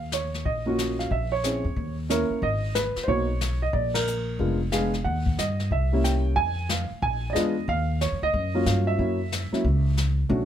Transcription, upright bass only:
Already playing: D#2
0.45 A#1
1.11 A#1
1.64 E2
1.76 D#2
2.30 muted upright bass stroke
2.42 G#1
2.96 muted upright bass stroke
3.08 B1
3.73 A#1
4.39 F1
5.05 D#2
5.37 G2
5.71 C2
6.36 F2
6.91 muted upright bass stroke
7.02 A#1
7.35 E2
7.68 D#2
8.12 F2
8.22 D2
8.34 F#2
8.66 G2
8.99 F#2
9.52 muted upright bass stroke
9.64 C#2
10.29 B1

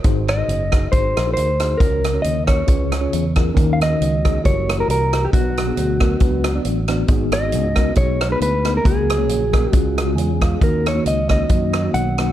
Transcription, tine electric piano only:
0.04 G#2 D#4 F#4 G#4 C5
0.37 D#4 F#4 G#4 C5
0.72 D#4 F#4 G#4 D#5
0.92 D#4 F#4 G#4 C5
1.26 D#4 F#4 G#4 A#4
1.60 D#4 F#4 G#4 C5
1.80 C#3 C#4 F#4 A#4 C#5
2.14 C#4 F#4 A#4 C#5
2.48 C#4 F#4 A#4 C#5
2.67 C#3 C#4 F4 G#4 B4
3.01 C#4 F4 G#4 C#5
3.36 C#4 F4 G#4 A#4
3.54 D#3 C#4 D#4 F#4 A#4
3.89 C#4 D#4 F#4 A#4
4.24 C#4 D#4 F#4 G#4
4.43 E4 F#4 G4 A#4
4.78 E4 F#4 G4 A#4
5.12 E4 F#4 G4 A#4
5.33 B2 B3 D4 F#4 B4
5.67 B3 D4 F#4 G#4
6.01 B3 D4 F#4 A#4
6.20 B3 D4 F#4 B4
6.54 B3 D4 F#4 D5
6.88 B3 D4 F#4 D5
7.08 G#2 B3 D#4 F#4 G#4
7.42 B3 D#4 F#4 G#4
7.77 B3 D#4 F#4 A#4
7.96 B3 D#4 F#4 G#4
8.30 B3 D#4 F#4 G#4
8.64 B3 D#4 F#4 G#4
8.84 C#3 A#3 C#4 F#4 A#4
9.18 A#3 C#4 F#4 C#5
9.52 A#3 C#4 F#4 A#4
9.72 C#3 G#3 C#4 F4 G#4
10.06 G#3 C#4 F4 G#4
10.16 G#5
10.41 G#3 C#4 F4 G#4 F5
10.61 D#3 A#3 C#4 D#4 F#4
10.95 A#3 C#4 D#4 F#4
11.29 A#3 C#4 D#4 F#4
11.49 A#3 C#4 D#4 F#4
11.84 A#3 C#4 D#4 F#4
12.19 A#3 C#4 D#4 F#4

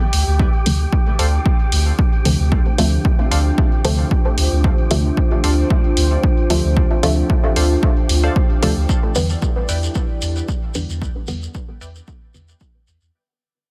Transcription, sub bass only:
0.13 D2
0.27 D2
0.66 D2
1.19 D2
1.72 D2
2.25 D2
2.39 D2
2.78 D2
3.31 D2
3.84 D2
4.38 D2
4.52 D2
4.91 D2
5.44 D2
5.97 D2
6.50 D2
6.64 D2
7.03 D2
7.56 D2
8.09 D2
8.63 D2
8.77 D2
9.16 E2
9.69 E2
10.22 E2
10.75 E2
10.89 E2
11.28 E2
11.81 E2
12.34 E2
12.87 E2
13.01 E2

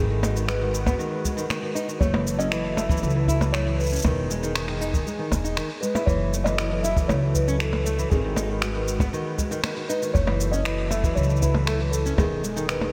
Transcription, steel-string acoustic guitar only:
0.10 D#3
0.23 D#4
0.36 D#3
0.48 G#3
0.61 D#3
0.86 B3
0.99 D#3
1.24 G#3
1.37 D#3
1.50 D#3
1.62 D#3
1.75 D#4
1.88 D#3
2.01 A3
2.14 E3
2.39 C#4
2.52 E3
2.77 A3
2.90 E3
3.03 E3
3.15 E3
3.28 E4
3.41 E3
3.54 A3
3.67 E3
3.92 C#4
4.05 D#3
4.30 G#3
4.43 D#3
4.56 D#3
4.68 D#3
4.81 D#4
4.94 D#3
5.06 G#3
5.19 D#3
5.44 D#4
5.57 D#3
5.83 G#3
5.95 E4
6.08 E3
6.33 A3
6.46 E3
6.59 E3
6.71 E3
6.84 E4
6.97 E3
7.10 A3
7.22 E3
7.48 C#4
7.61 E3
7.86 A3
7.99 E3
8.12 D#3
8.24 D#3
8.37 D#4
8.50 D#3
8.62 G#3
8.75 D#3
9.00 B3
9.13 D#3
9.38 G#3
9.51 D#3
9.64 D#3
9.77 D#3
9.89 D#4
10.02 D#3
10.15 A3
10.28 E3
10.53 C#4
10.66 E3
10.92 A3
11.04 E3
11.17 E3
11.30 E3
11.42 E4
11.55 E3
11.68 A3
11.80 E3
12.06 C#4
12.19 D#3
12.44 G#3
12.56 D#3
12.69 D#3
12.82 D#3

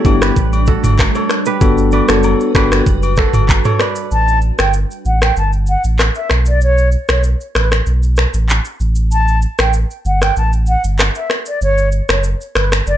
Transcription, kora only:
Already playing: E4 F#4 A4 B4 C#5
0.21 G4 B4
0.68 F#4 A4
1.15 A4 C#5
1.47 G4 B4
1.93 B4 D5
2.09 A4 C#5
2.55 G4 B4
3.18 F#4 A4
3.65 A4 C#5
3.80 B4 D5

